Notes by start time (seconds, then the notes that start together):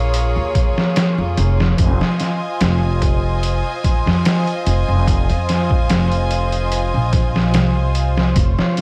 Already playing: A#1 A#3 F4 G#4 C#5
0.14 closed hi-hat
0.36 D#2
0.55 kick, closed hi-hat
0.78 snare
0.96 snare, closed hi-hat
1.18 F2
1.37 F1, closed hi-hat
1.60 snare
1.78 F1 F4 C5 D#5 G#5, kick, closed hi-hat
2.01 snare
2.20 snare, closed hi-hat
2.61 F1, snare, closed hi-hat
3.02 kick, closed hi-hat
3.43 closed hi-hat
3.84 kick, closed hi-hat
4.06 F2, snare
4.25 snare, closed hi-hat
4.47 closed hi-hat
4.66 F1, closed hi-hat
4.88 F1
5.07 kick, closed hi-hat
5.29 F2, closed hi-hat
5.49 snare, closed hi-hat
5.70 kick
5.90 F1, snare, closed hi-hat
6.12 closed hi-hat
6.31 closed hi-hat
6.52 closed hi-hat
6.72 closed hi-hat
6.94 A#1
7.13 kick, closed hi-hat
7.36 snare
7.54 C2, snare, closed hi-hat
7.95 closed hi-hat
8.17 snare
8.35 F1 F4 C#5, kick, closed hi-hat
8.59 snare
8.77 snare, closed hi-hat